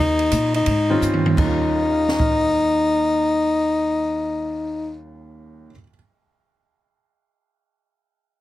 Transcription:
0, 0, Header, 1, 5, 480
1, 0, Start_track
1, 0, Tempo, 352941
1, 1863, Time_signature, 4, 2, 24, 8
1, 11436, End_track
2, 0, Start_track
2, 0, Title_t, "Grand piano"
2, 0, Program_c, 0, 0
2, 1218, Note_on_c, 0, 51, 92
2, 1223, Note_on_c, 0, 55, 71
2, 1226, Note_on_c, 0, 60, 86
2, 1240, Note_on_c, 0, 61, 82
2, 1240, Note_on_c, 0, 65, 97
2, 1831, Note_off_c, 0, 51, 0
2, 1833, Note_off_c, 0, 55, 0
2, 1834, Note_off_c, 0, 60, 0
2, 1841, Note_off_c, 0, 61, 0
2, 1841, Note_off_c, 0, 65, 0
2, 1872, Note_on_c, 0, 39, 71
2, 1878, Note_on_c, 0, 55, 59
2, 1888, Note_on_c, 0, 51, 59
2, 1898, Note_on_c, 0, 58, 65
2, 1903, Note_on_c, 0, 61, 65
2, 1913, Note_on_c, 0, 65, 77
2, 2373, Note_on_c, 0, 70, 44
2, 2478, Note_on_c, 0, 73, 49
2, 2592, Note_on_c, 0, 77, 41
2, 2719, Note_on_c, 0, 82, 39
2, 2850, Note_on_c, 0, 85, 38
2, 2991, Note_on_c, 0, 89, 40
2, 3154, Note_on_c, 0, 94, 35
2, 7702, Note_off_c, 0, 70, 0
2, 7747, Note_off_c, 0, 39, 0
2, 7750, Note_off_c, 0, 55, 0
2, 7755, Note_off_c, 0, 51, 0
2, 7755, Note_off_c, 0, 73, 0
2, 7760, Note_off_c, 0, 58, 0
2, 7762, Note_off_c, 0, 61, 0
2, 7767, Note_off_c, 0, 65, 0
2, 7812, Note_off_c, 0, 77, 0
2, 7876, Note_off_c, 0, 82, 0
2, 7941, Note_off_c, 0, 85, 0
2, 8012, Note_off_c, 0, 89, 0
2, 8093, Note_off_c, 0, 94, 0
2, 11436, End_track
3, 0, Start_track
3, 0, Title_t, "Tenor saxophone"
3, 0, Program_c, 1, 66
3, 0, Note_on_c, 1, 63, 100
3, 700, Note_off_c, 1, 63, 0
3, 754, Note_on_c, 1, 63, 90
3, 1651, Note_off_c, 1, 63, 0
3, 1877, Note_on_c, 1, 63, 97
3, 6743, Note_off_c, 1, 63, 0
3, 11436, End_track
4, 0, Start_track
4, 0, Title_t, "Upright bass"
4, 0, Program_c, 2, 32
4, 0, Note_on_c, 2, 39, 92
4, 407, Note_off_c, 2, 39, 0
4, 428, Note_on_c, 2, 46, 85
4, 891, Note_off_c, 2, 46, 0
4, 901, Note_on_c, 2, 44, 97
4, 1367, Note_off_c, 2, 44, 0
4, 1377, Note_on_c, 2, 43, 89
4, 1845, Note_off_c, 2, 43, 0
4, 1866, Note_on_c, 2, 39, 94
4, 7689, Note_off_c, 2, 39, 0
4, 11436, End_track
5, 0, Start_track
5, 0, Title_t, "Drums"
5, 257, Note_on_c, 9, 51, 44
5, 393, Note_off_c, 9, 51, 0
5, 425, Note_on_c, 9, 36, 25
5, 429, Note_on_c, 9, 44, 70
5, 429, Note_on_c, 9, 51, 77
5, 561, Note_off_c, 9, 36, 0
5, 565, Note_off_c, 9, 44, 0
5, 565, Note_off_c, 9, 51, 0
5, 738, Note_on_c, 9, 51, 52
5, 874, Note_off_c, 9, 51, 0
5, 899, Note_on_c, 9, 51, 66
5, 904, Note_on_c, 9, 36, 24
5, 1035, Note_off_c, 9, 51, 0
5, 1040, Note_off_c, 9, 36, 0
5, 1382, Note_on_c, 9, 44, 58
5, 1518, Note_off_c, 9, 44, 0
5, 1543, Note_on_c, 9, 48, 61
5, 1679, Note_off_c, 9, 48, 0
5, 1710, Note_on_c, 9, 48, 87
5, 1846, Note_off_c, 9, 48, 0
5, 1868, Note_on_c, 9, 36, 55
5, 1876, Note_on_c, 9, 49, 62
5, 2004, Note_off_c, 9, 36, 0
5, 2012, Note_off_c, 9, 49, 0
5, 2833, Note_on_c, 9, 38, 58
5, 2969, Note_off_c, 9, 38, 0
5, 2985, Note_on_c, 9, 36, 74
5, 3121, Note_off_c, 9, 36, 0
5, 11436, End_track
0, 0, End_of_file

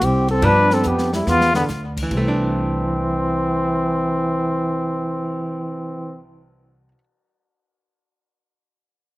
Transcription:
0, 0, Header, 1, 7, 480
1, 0, Start_track
1, 0, Key_signature, 0, "major"
1, 0, Tempo, 417537
1, 508, Time_signature, 4, 2, 24, 8
1, 10546, End_track
2, 0, Start_track
2, 0, Title_t, "Trumpet"
2, 0, Program_c, 0, 56
2, 52, Note_on_c, 0, 67, 70
2, 348, Note_off_c, 0, 67, 0
2, 354, Note_on_c, 0, 69, 93
2, 515, Note_on_c, 0, 71, 103
2, 532, Note_off_c, 0, 69, 0
2, 846, Note_on_c, 0, 69, 83
2, 864, Note_off_c, 0, 71, 0
2, 1005, Note_on_c, 0, 67, 75
2, 1023, Note_off_c, 0, 69, 0
2, 1313, Note_off_c, 0, 67, 0
2, 1320, Note_on_c, 0, 64, 83
2, 1483, Note_on_c, 0, 65, 111
2, 1500, Note_off_c, 0, 64, 0
2, 1779, Note_off_c, 0, 65, 0
2, 1786, Note_on_c, 0, 59, 84
2, 1882, Note_off_c, 0, 59, 0
2, 2444, Note_on_c, 0, 60, 83
2, 7148, Note_off_c, 0, 60, 0
2, 10546, End_track
3, 0, Start_track
3, 0, Title_t, "Trombone"
3, 0, Program_c, 1, 57
3, 32, Note_on_c, 1, 60, 65
3, 344, Note_off_c, 1, 60, 0
3, 351, Note_on_c, 1, 60, 73
3, 509, Note_on_c, 1, 62, 81
3, 526, Note_off_c, 1, 60, 0
3, 826, Note_on_c, 1, 60, 75
3, 843, Note_off_c, 1, 62, 0
3, 966, Note_on_c, 1, 59, 67
3, 983, Note_off_c, 1, 60, 0
3, 1290, Note_off_c, 1, 59, 0
3, 1297, Note_on_c, 1, 55, 68
3, 1450, Note_on_c, 1, 59, 79
3, 1467, Note_off_c, 1, 55, 0
3, 1757, Note_off_c, 1, 59, 0
3, 1764, Note_on_c, 1, 50, 64
3, 1923, Note_off_c, 1, 50, 0
3, 2427, Note_on_c, 1, 52, 68
3, 7139, Note_off_c, 1, 52, 0
3, 10546, End_track
4, 0, Start_track
4, 0, Title_t, "Hollow-body jazz guitar"
4, 0, Program_c, 2, 26
4, 485, Note_on_c, 2, 53, 55
4, 496, Note_on_c, 2, 62, 59
4, 498, Note_on_c, 2, 59, 61
4, 1838, Note_off_c, 2, 53, 0
4, 1844, Note_off_c, 2, 62, 0
4, 1845, Note_off_c, 2, 59, 0
4, 2331, Note_on_c, 2, 52, 61
4, 2497, Note_on_c, 2, 57, 67
4, 2623, Note_on_c, 2, 62, 61
4, 7911, Note_off_c, 2, 52, 0
4, 8025, Note_off_c, 2, 57, 0
4, 8088, Note_off_c, 2, 62, 0
4, 10546, End_track
5, 0, Start_track
5, 0, Title_t, "Upright bass"
5, 0, Program_c, 3, 32
5, 13, Note_on_c, 3, 36, 84
5, 479, Note_off_c, 3, 36, 0
5, 486, Note_on_c, 3, 43, 93
5, 962, Note_off_c, 3, 43, 0
5, 982, Note_on_c, 3, 41, 84
5, 1449, Note_off_c, 3, 41, 0
5, 1458, Note_on_c, 3, 40, 92
5, 1927, Note_off_c, 3, 40, 0
5, 1939, Note_on_c, 3, 38, 83
5, 2408, Note_off_c, 3, 38, 0
5, 2424, Note_on_c, 3, 36, 84
5, 7943, Note_off_c, 3, 36, 0
5, 10546, End_track
6, 0, Start_track
6, 0, Title_t, "Cymbal swell"
6, 2757, Note_on_c, 9, 59, 45
6, 6174, Note_off_c, 9, 59, 0
6, 10546, End_track
7, 0, Start_track
7, 0, Title_t, "Drums"
7, 16, Note_on_c, 9, 44, 58
7, 16, Note_on_c, 9, 51, 61
7, 131, Note_off_c, 9, 44, 0
7, 131, Note_off_c, 9, 51, 0
7, 326, Note_on_c, 9, 51, 45
7, 441, Note_off_c, 9, 51, 0
7, 485, Note_on_c, 9, 51, 58
7, 600, Note_off_c, 9, 51, 0
7, 809, Note_on_c, 9, 38, 62
7, 924, Note_off_c, 9, 38, 0
7, 959, Note_on_c, 9, 44, 68
7, 1074, Note_off_c, 9, 44, 0
7, 1128, Note_on_c, 9, 38, 46
7, 1243, Note_off_c, 9, 38, 0
7, 1298, Note_on_c, 9, 38, 67
7, 1413, Note_off_c, 9, 38, 0
7, 1458, Note_on_c, 9, 38, 63
7, 1573, Note_off_c, 9, 38, 0
7, 1619, Note_on_c, 9, 38, 67
7, 1734, Note_off_c, 9, 38, 0
7, 1774, Note_on_c, 9, 38, 76
7, 1889, Note_off_c, 9, 38, 0
7, 1934, Note_on_c, 9, 44, 50
7, 1939, Note_on_c, 9, 38, 49
7, 2049, Note_off_c, 9, 44, 0
7, 2054, Note_off_c, 9, 38, 0
7, 2263, Note_on_c, 9, 36, 76
7, 2267, Note_on_c, 9, 49, 69
7, 2378, Note_off_c, 9, 36, 0
7, 2382, Note_off_c, 9, 49, 0
7, 2425, Note_on_c, 9, 36, 59
7, 2425, Note_on_c, 9, 49, 54
7, 2539, Note_off_c, 9, 36, 0
7, 2540, Note_off_c, 9, 49, 0
7, 10546, End_track
0, 0, End_of_file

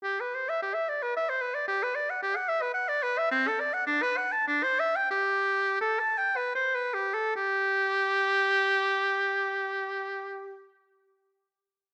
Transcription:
0, 0, Header, 1, 2, 480
1, 0, Start_track
1, 0, Key_signature, 1, "major"
1, 0, Tempo, 572519
1, 43, Time_signature, 3, 2, 24, 8
1, 520, Tempo, 531915
1, 2440, Tempo, 574163
1, 3880, Tempo, 645161
1, 4360, Tempo, 714286
1, 5320, Tempo, 780234
1, 8638, End_track
2, 0, Start_track
2, 0, Title_t, "Oboe"
2, 0, Program_c, 0, 68
2, 30, Note_on_c, 0, 67, 56
2, 172, Note_on_c, 0, 71, 44
2, 185, Note_off_c, 0, 67, 0
2, 290, Note_on_c, 0, 72, 43
2, 302, Note_off_c, 0, 71, 0
2, 412, Note_on_c, 0, 76, 48
2, 424, Note_off_c, 0, 72, 0
2, 518, Note_off_c, 0, 76, 0
2, 523, Note_on_c, 0, 67, 51
2, 627, Note_on_c, 0, 76, 51
2, 641, Note_off_c, 0, 67, 0
2, 763, Note_on_c, 0, 74, 46
2, 777, Note_off_c, 0, 76, 0
2, 884, Note_on_c, 0, 71, 50
2, 898, Note_off_c, 0, 74, 0
2, 1001, Note_off_c, 0, 71, 0
2, 1011, Note_on_c, 0, 76, 59
2, 1128, Note_on_c, 0, 72, 53
2, 1141, Note_off_c, 0, 76, 0
2, 1236, Note_on_c, 0, 71, 48
2, 1249, Note_off_c, 0, 72, 0
2, 1352, Note_on_c, 0, 74, 51
2, 1365, Note_off_c, 0, 71, 0
2, 1468, Note_off_c, 0, 74, 0
2, 1473, Note_on_c, 0, 67, 69
2, 1612, Note_on_c, 0, 71, 59
2, 1625, Note_off_c, 0, 67, 0
2, 1722, Note_on_c, 0, 74, 56
2, 1736, Note_off_c, 0, 71, 0
2, 1857, Note_on_c, 0, 78, 60
2, 1870, Note_off_c, 0, 74, 0
2, 1963, Note_off_c, 0, 78, 0
2, 1968, Note_on_c, 0, 67, 69
2, 2087, Note_on_c, 0, 78, 64
2, 2100, Note_off_c, 0, 67, 0
2, 2206, Note_on_c, 0, 76, 65
2, 2219, Note_off_c, 0, 78, 0
2, 2321, Note_on_c, 0, 71, 58
2, 2335, Note_off_c, 0, 76, 0
2, 2428, Note_off_c, 0, 71, 0
2, 2433, Note_on_c, 0, 78, 71
2, 2556, Note_on_c, 0, 74, 69
2, 2568, Note_off_c, 0, 78, 0
2, 2677, Note_on_c, 0, 71, 65
2, 2690, Note_off_c, 0, 74, 0
2, 2804, Note_on_c, 0, 76, 70
2, 2816, Note_off_c, 0, 71, 0
2, 2907, Note_off_c, 0, 76, 0
2, 2912, Note_on_c, 0, 60, 78
2, 3052, Note_on_c, 0, 69, 64
2, 3065, Note_off_c, 0, 60, 0
2, 3154, Note_on_c, 0, 74, 65
2, 3167, Note_off_c, 0, 69, 0
2, 3267, Note_on_c, 0, 78, 75
2, 3279, Note_off_c, 0, 74, 0
2, 3373, Note_off_c, 0, 78, 0
2, 3378, Note_on_c, 0, 62, 85
2, 3507, Note_on_c, 0, 71, 71
2, 3520, Note_off_c, 0, 62, 0
2, 3629, Note_on_c, 0, 78, 67
2, 3641, Note_off_c, 0, 71, 0
2, 3756, Note_on_c, 0, 81, 71
2, 3769, Note_off_c, 0, 78, 0
2, 3879, Note_off_c, 0, 81, 0
2, 3884, Note_on_c, 0, 62, 78
2, 4001, Note_on_c, 0, 72, 68
2, 4012, Note_off_c, 0, 62, 0
2, 4123, Note_on_c, 0, 76, 60
2, 4135, Note_off_c, 0, 72, 0
2, 4245, Note_on_c, 0, 79, 63
2, 4256, Note_off_c, 0, 76, 0
2, 4350, Note_off_c, 0, 79, 0
2, 4355, Note_on_c, 0, 67, 67
2, 4813, Note_off_c, 0, 67, 0
2, 4827, Note_on_c, 0, 69, 67
2, 4949, Note_on_c, 0, 81, 62
2, 4959, Note_off_c, 0, 69, 0
2, 5075, Note_on_c, 0, 79, 56
2, 5085, Note_off_c, 0, 81, 0
2, 5198, Note_on_c, 0, 71, 52
2, 5209, Note_off_c, 0, 79, 0
2, 5321, Note_off_c, 0, 71, 0
2, 5324, Note_on_c, 0, 72, 60
2, 5445, Note_on_c, 0, 71, 53
2, 5454, Note_off_c, 0, 72, 0
2, 5564, Note_on_c, 0, 67, 48
2, 5573, Note_off_c, 0, 71, 0
2, 5687, Note_on_c, 0, 69, 54
2, 5696, Note_off_c, 0, 67, 0
2, 5811, Note_off_c, 0, 69, 0
2, 5823, Note_on_c, 0, 67, 80
2, 7852, Note_off_c, 0, 67, 0
2, 8638, End_track
0, 0, End_of_file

